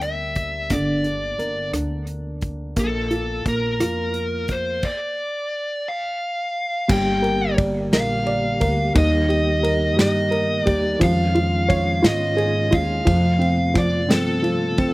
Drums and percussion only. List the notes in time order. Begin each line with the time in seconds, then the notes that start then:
0.01 closed hi-hat
0.35 kick, closed hi-hat
0.70 kick, closed hi-hat
1.04 closed hi-hat
1.39 closed hi-hat
1.74 cross-stick, closed hi-hat
2.07 closed hi-hat
2.41 kick, closed hi-hat
2.76 kick, closed hi-hat
3.11 closed hi-hat
3.46 kick, closed hi-hat
3.80 cross-stick, closed hi-hat
4.14 closed hi-hat
4.48 kick, closed hi-hat
4.83 kick, crash
6.89 kick, crash
7.24 ride
7.58 kick, ride
7.93 snare, ride
8.27 ride
8.61 kick, ride
8.96 kick, ride
9.30 ride
9.64 ride
9.99 snare, ride
10.32 ride
10.67 kick, ride
11.01 kick, ride
11.36 ride
11.70 kick, ride
12.04 snare, ride
12.38 ride
12.72 kick, ride
13.07 kick, ride
13.41 ride
13.75 kick, snare, ride
14.11 snare, ride
14.44 ride
14.78 kick, ride